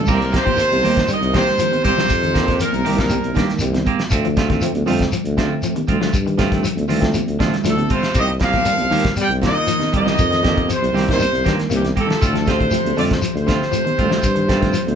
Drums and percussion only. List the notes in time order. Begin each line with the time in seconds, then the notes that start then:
0.03 low conga, shekere
0.08 kick, crash
0.22 closed hi-hat
0.32 kick, snare, closed hi-hat, high conga, shekere
0.47 kick, closed hi-hat, high conga
0.57 closed hi-hat, shekere
0.72 closed hi-hat, high conga
0.83 open hi-hat, low conga, shekere
0.97 kick, snare, closed hi-hat
1.08 closed hi-hat, shekere
1.23 closed hi-hat
1.33 kick, snare, closed hi-hat, high conga, shekere
1.47 snare, low conga
1.58 closed hi-hat, shekere
1.71 closed hi-hat, high conga
1.83 kick, closed hi-hat, high conga, low conga, shekere
1.99 snare
2.09 kick, closed hi-hat, shekere
2.23 closed hi-hat
2.34 kick, snare, closed hi-hat, high conga, shekere
2.48 kick, snare, closed hi-hat
2.59 closed hi-hat, shekere
2.73 closed hi-hat, high conga
2.85 open hi-hat, low conga, shekere
2.98 kick, snare, closed hi-hat
3.09 closed hi-hat, high conga, shekere
3.24 closed hi-hat
3.35 kick, snare, closed hi-hat, high conga, shekere
3.48 snare, closed hi-hat, low conga
3.59 closed hi-hat, shekere
3.73 snare, closed hi-hat, high conga
3.85 kick, closed hi-hat, high conga, low conga, shekere
3.99 snare, closed hi-hat
4.10 kick, closed hi-hat, shekere
4.25 closed hi-hat
4.36 kick, snare, closed hi-hat, high conga, shekere
4.50 kick, snare, closed hi-hat, high conga
4.61 closed hi-hat, shekere
4.75 closed hi-hat, high conga
4.86 open hi-hat, low conga, shekere
5.00 kick, snare, closed hi-hat
5.12 closed hi-hat, shekere
5.25 closed hi-hat
5.38 kick, snare, closed hi-hat, high conga, shekere
5.62 closed hi-hat, shekere
5.76 closed hi-hat, high conga
5.88 kick, closed hi-hat, low conga, shekere
6.01 snare
6.13 kick, closed hi-hat, shekere
6.27 closed hi-hat
6.39 kick, snare, closed hi-hat, high conga, shekere
6.52 kick, snare, closed hi-hat
6.64 closed hi-hat, shekere
6.77 closed hi-hat, high conga
6.88 open hi-hat, low conga, shekere
7.02 kick, snare, closed hi-hat
7.14 closed hi-hat, high conga, shekere
7.28 closed hi-hat
7.40 kick, snare, closed hi-hat, high conga, shekere
7.53 snare, closed hi-hat, low conga
7.64 snare, closed hi-hat, shekere
7.77 closed hi-hat, high conga
7.89 kick, closed hi-hat, high conga, low conga, shekere
8.03 snare, closed hi-hat
8.14 kick, closed hi-hat, shekere
8.28 closed hi-hat
8.40 kick, snare, closed hi-hat, high conga, shekere
8.52 kick, snare, closed hi-hat, high conga
8.65 closed hi-hat, shekere
8.78 closed hi-hat, high conga
8.91 open hi-hat, low conga, shekere
9.05 kick, snare, closed hi-hat
9.16 closed hi-hat, high conga, shekere
9.31 closed hi-hat
9.42 kick, snare, closed hi-hat, high conga, shekere
9.67 closed hi-hat, shekere
9.79 snare, closed hi-hat, high conga
9.92 kick, closed hi-hat, low conga, shekere
10.07 snare
10.18 kick, closed hi-hat, shekere
10.32 snare, closed hi-hat
10.43 kick, snare, closed hi-hat, high conga, shekere
10.56 kick, closed hi-hat, high conga
10.70 closed hi-hat, shekere
10.82 closed hi-hat, high conga
10.94 snare, open hi-hat, low conga, shekere
11.09 kick, snare, closed hi-hat
11.19 closed hi-hat, high conga, shekere
11.35 closed hi-hat
11.44 kick, snare, closed hi-hat, high conga, shekere
11.59 snare, closed hi-hat, low conga
11.70 closed hi-hat, shekere
11.85 snare, closed hi-hat, high conga
11.96 kick, closed hi-hat, low conga, shekere
12.10 snare, closed hi-hat
12.22 kick, closed hi-hat, shekere
12.35 snare, closed hi-hat
12.46 kick, snare, closed hi-hat, high conga, shekere
12.61 kick, closed hi-hat
12.71 closed hi-hat, shekere
12.85 closed hi-hat, high conga
12.96 open hi-hat, low conga, shekere
13.11 kick, snare, closed hi-hat
13.22 closed hi-hat, shekere
13.37 closed hi-hat
13.47 kick, snare, closed hi-hat, high conga, shekere
13.62 snare
13.72 closed hi-hat, shekere
13.87 closed hi-hat, high conga
13.98 kick, closed hi-hat, low conga, shekere
14.11 snare
14.23 kick, closed hi-hat, shekere
14.36 closed hi-hat
14.48 kick, snare, closed hi-hat, high conga, shekere
14.62 kick, snare, closed hi-hat, high conga
14.73 closed hi-hat, shekere
14.87 closed hi-hat, high conga